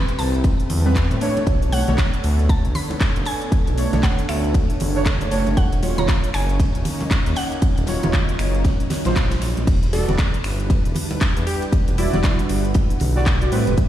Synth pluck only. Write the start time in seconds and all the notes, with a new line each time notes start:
Already playing: B5
0.19 A5
1.72 F#5
2.49 A5
2.75 B5
3.26 G#5
4.03 F#5
4.29 E5
5.57 F#5
5.98 A#5
6.34 G#5
7.37 F#5